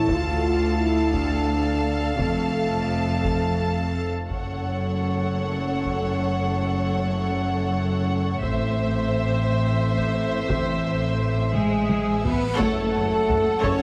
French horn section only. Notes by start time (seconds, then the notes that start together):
0.13 F4
0.78 E4
1.12 D4
2.17 A3
4.29 A3 C#4
8.42 A3 C4
11.55 G#3
12.26 B3
12.60 A3
13.65 C#4